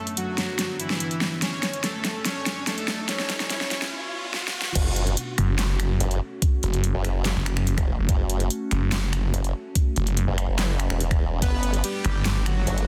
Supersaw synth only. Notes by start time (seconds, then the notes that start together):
0.17 F#3 F#4
0.79 E3 E4
1.42 C#4 C#5
1.84 A3 A4
2.25 C#4 C#5
2.67 A3 A4
3.09 C#4 C#5
3.50 C#4 C#5
11.42 B3 B4
11.84 G3 G4
12.46 F#3 F#4